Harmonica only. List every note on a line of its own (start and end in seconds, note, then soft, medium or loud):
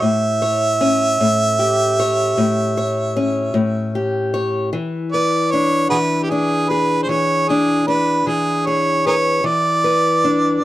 0.01 3.95 E5 loud
5.12 5.53 D5 loud
5.51 5.89 C#5 loud
5.90 5.98 F#4 medium
5.90 5.96 G#4 medium
5.90 6.25 B4 loud
6.23 6.31 G4 medium
6.30 6.71 G#4 medium
6.69 7.02 B4 loud
7.03 7.11 C5 medium
7.09 7.50 C#5 medium
7.48 7.87 G#4 medium
7.87 8.29 B4 medium
8.27 8.68 G#4 medium
8.67 9.06 C#5 medium
9.07 9.15 G#4 medium
9.07 9.15 A#4 medium
9.07 9.47 C#5 medium
9.46 10.64 D5 medium